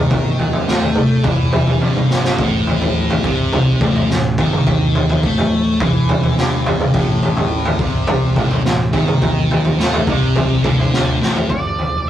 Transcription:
0.00 0.64 D#2 medium
0.00 0.67 D#3 loud
0.11 kick medium
0.11 floor tom medium
0.39 floor tom medium
0.53 floor tom medium
0.68 1.21 A2 medium
0.68 1.24 A3 loud
0.68 snare medium
0.81 floor tom medium
0.95 mid tom medium
1.24 1.77 E2 medium
1.24 1.81 E3 medium
1.24 kick loud
1.24 floor tom medium
1.24 mid tom medium
1.52 floor tom medium
1.52 mid tom medium
1.67 floor tom medium
1.81 2.35 G1 medium
1.81 2.38 G2 medium
1.81 high tom medium
1.96 mid tom medium
2.11 snare medium
2.25 snare medium
2.38 3.20 A1 medium
2.38 3.23 A2 medium
2.38 kick loud
2.38 floor tom medium
2.67 floor tom medium
2.81 floor tom medium
3.10 floor tom medium
3.24 3.77 C2 medium
3.24 3.80 C3 medium
3.24 kick loud
3.53 floor tom medium
3.53 mid tom medium
3.81 4.07 A1 medium
3.81 4.09 A2 medium
3.81 kick loud
3.81 floor tom medium
3.81 mid tom medium
3.95 floor tom medium
4.09 4.36 A1 medium
4.09 4.33 A2 medium
4.09 snare medium
4.38 5.19 D#2 medium
4.38 5.23 D#3 loud
4.38 kick loud
4.38 floor tom medium
4.53 mid tom medium
4.67 kick loud
4.67 floor tom medium
4.95 floor tom medium
5.10 floor tom medium
5.23 5.76 A2 loud
5.23 5.80 A3 medium
5.23 kick loud
5.38 floor tom medium
5.80 6.33 E2 loud
5.80 6.37 E3 loud
5.80 kick loud
5.80 floor tom medium
5.80 mid tom medium
6.09 floor tom medium
6.09 mid tom medium
6.23 floor tom medium
6.37 6.90 G1 medium
6.37 6.94 G2 loud
6.37 snare medium
6.66 floor tom medium
6.80 mid tom medium
6.94 7.76 A1 medium
6.94 7.78 A2 medium
6.94 kick loud
6.94 floor tom medium
7.23 floor tom medium
7.37 floor tom medium
7.65 floor tom medium
7.79 8.32 C2 medium
7.79 8.35 C3 loud
7.79 kick loud
8.07 floor tom medium
8.07 mid tom medium
8.36 8.63 A1 medium
8.36 8.63 A2 medium
8.36 kick loud
8.36 floor tom medium
8.36 mid tom medium
8.51 floor tom medium
8.64 8.91 A1 medium
8.64 8.87 A2 medium
8.64 snare medium
8.93 9.75 D#2 loud
8.93 9.78 D#3 medium
8.93 kick loud
8.93 floor tom medium
9.08 mid tom medium
9.22 kick loud
9.22 floor tom medium
9.51 floor tom medium
9.65 floor tom medium
9.78 10.05 A2 medium
9.78 10.06 A3 medium
9.78 snare medium
9.93 floor tom medium
10.07 10.60 C2 medium
10.07 10.63 C3 medium
10.07 kick loud
10.07 mid tom medium
10.36 floor tom medium
10.36 mid tom medium
10.63 11.17 D2 medium
10.63 11.20 D3 medium
10.63 kick loud
10.63 floor tom medium
10.63 mid tom medium
10.79 floor tom medium
10.94 snare medium
11.21 11.48 A1 medium
11.21 11.49 A2 medium
11.21 snare medium
11.36 floor tom medium
11.50 11.90 G1 medium
11.50 12.09 D5 medium
11.50 kick medium
11.50 floor tom medium
11.79 floor tom medium
11.93 12.10 F1 medium

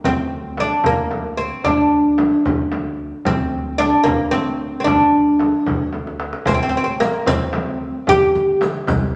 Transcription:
0.04 0.69 D2 medium
0.04 0.55 C4 medium
0.04 frame drum medium
0.04 tombak dum medium
0.32 tombak ka soft
0.57 0.87 D4 medium
0.57 tombak tek medium
0.57 frame drum medium
0.84 1.49 D2 medium
0.84 1.41 A#3 medium
0.84 frame drum medium
0.84 tombak dum medium
1.11 tombak tek soft
1.11 frame drum medium
1.37 1.64 C4 medium
1.37 tombak ka soft
1.64 2.30 D2 medium
1.64 2.42 D4 medium
1.64 frame drum medium
1.64 tombak dum medium
1.93 tombak ka soft
2.18 tombak tek medium
2.18 frame drum medium
2.45 3.10 D2 medium
2.45 frame drum medium
2.45 tombak dum medium
2.72 tombak tek medium
2.72 frame drum medium
3.00 tombak ka soft
3.25 3.91 D2 medium
3.25 3.82 C4 medium
3.25 frame drum medium
3.25 tombak dum medium
3.53 tombak ka soft
3.78 4.07 D4 medium
3.78 tombak tek medium
3.78 frame drum medium
4.04 4.71 D2 medium
4.04 4.31 A#3 medium
4.04 frame drum medium
4.04 tombak dum medium
4.31 4.79 C4 medium
4.31 tombak tek medium
4.31 frame drum medium
4.61 tombak ka soft
4.80 4.84 C4 medium
4.84 5.51 D2 medium
4.84 5.89 D4 medium
4.84 frame drum medium
4.84 tombak dum medium
5.14 tombak ka soft
5.39 tombak tek medium
5.39 frame drum medium
5.66 6.31 D2 medium
5.66 frame drum medium
5.66 tombak dum medium
5.93 tombak tek soft
5.93 frame drum medium
6.07 tombak ka medium
6.20 tombak tek medium
6.33 tombak ka medium
6.46 7.12 D2 medium
6.46 6.53 C4 medium
6.46 riq medium
6.46 frame drum loud
6.46 tombak dum medium
6.54 6.61 C4 medium
6.63 6.68 C4 medium
6.69 6.76 C4 medium
6.74 6.83 C4 medium
6.74 riq soft
6.74 tombak ka soft
6.84 6.92 C4 medium
7.00 7.27 A#3 medium
7.00 riq soft
7.00 tombak tek medium
7.00 frame drum medium
7.26 7.92 D2 medium
7.26 8.10 C4 medium
7.26 riq medium
7.26 frame drum medium
7.26 tombak dum loud
7.53 tombak tek medium
7.53 frame drum medium
8.07 8.29 D3 medium
8.07 8.64 G4 loud
8.07 riq medium
8.07 frame drum medium
8.07 tombak dum medium
8.35 8.78 D3 medium
8.35 riq soft
8.35 tombak ka soft
8.61 riq soft
8.61 tombak tek medium
8.61 frame drum medium
8.87 9.15 C2 medium
8.87 riq medium
8.87 frame drum medium
8.87 tombak dum loud

